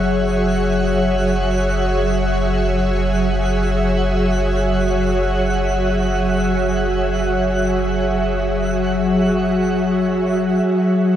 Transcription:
Already playing: F#1 F#3 F#4 G#4 C#5 E5 F#5
10.66 C#6

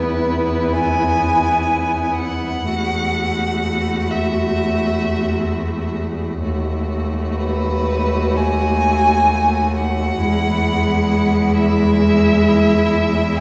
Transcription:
Already playing: E2 B3 E4 B4
0.73 G#5
2.19 F#5
2.66 E2 A3 F#4
4.10 E5
6.43 D#2 A3 F#4
7.35 B4
8.37 G#5
9.76 F#5
10.20 E2 G#3 E4
11.58 E5

